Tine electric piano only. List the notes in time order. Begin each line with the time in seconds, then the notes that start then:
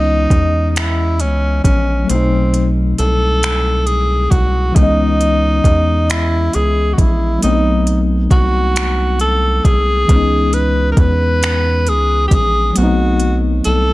Already playing: E3 G#3 B3 C#4 D#5
2.04 F#3 A3
2.09 B2 C4
2.15 D#4
4.72 E3 G#3
4.77 B3 C#4
4.83 D#5
7.39 F#3 A3
7.43 B3 C4
7.49 D4
7.55 D#4
10.06 E3 G#3
10.11 B3 C#4
10.16 D#4
12.73 F#3 A3
12.78 B3 C4
12.83 D#4